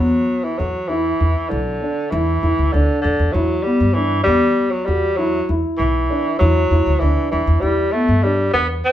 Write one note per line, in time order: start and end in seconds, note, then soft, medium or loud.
0.00 0.24 E2 medium
0.00 0.45 F#3 medium
0.00 0.34 B3 medium
0.43 0.60 E3 medium
0.58 1.11 E2 medium
0.58 0.90 F#3 medium
0.58 0.77 F#4 medium
0.88 1.51 E3 medium
0.88 1.08 E4 medium
1.20 1.33 E2 medium
1.20 1.57 E4 medium
1.49 1.77 B1 medium
1.49 2.12 D3 medium
1.81 2.00 D4 medium
2.10 2.38 E2 loud
2.10 2.74 E3 medium
2.10 2.30 E4 medium
2.43 2.56 E2 medium
2.43 2.61 E4 medium
2.59 2.71 D2 medium
2.72 2.87 D2 medium
2.72 3.01 D3 medium
2.72 3.10 D4 medium
3.02 3.17 E2 medium
3.02 3.34 D3 medium
3.19 3.32 E2 medium
3.32 3.60 E2 medium
3.32 3.64 F#3 medium
3.32 3.53 E4 medium
3.63 3.95 G3 medium
3.63 3.83 B3 medium
3.80 4.19 G2 medium
3.94 4.23 E3 medium
3.94 4.14 D4 medium
4.24 4.52 E2 medium
4.24 4.72 G3 loud
4.24 4.63 B3 medium
4.71 4.87 F#3 medium
4.85 5.40 E2 medium
4.85 5.18 G3 medium
4.85 5.06 F#4 medium
5.16 5.51 F#3 medium
5.16 5.36 E4 medium
5.49 5.62 E2 medium
5.49 5.85 E4 medium
5.77 6.06 B1 medium
5.77 6.36 E3 medium
6.10 6.28 D4 medium
6.39 6.67 E2 loud
6.39 7.01 F#3 loud
6.39 6.59 E4 medium
6.71 6.84 E2 medium
6.71 6.89 E4 medium
6.86 6.99 D2 medium
7.00 7.15 D2 medium
7.00 7.31 E3 medium
7.00 7.38 D4 medium
7.31 7.46 E2 medium
7.31 7.62 E3 medium
7.47 7.61 E2 medium
7.61 7.89 E2 medium
7.61 7.93 G3 medium
7.61 7.81 E4 medium
7.92 8.24 A3 medium
7.92 8.12 B3 medium
8.08 8.48 G2 medium
8.23 8.53 G3 medium
8.23 8.42 D4 medium
8.53 8.81 E2 medium
8.53 8.68 B3 loud
8.53 8.91 B4 medium
8.84 8.92 C4 loud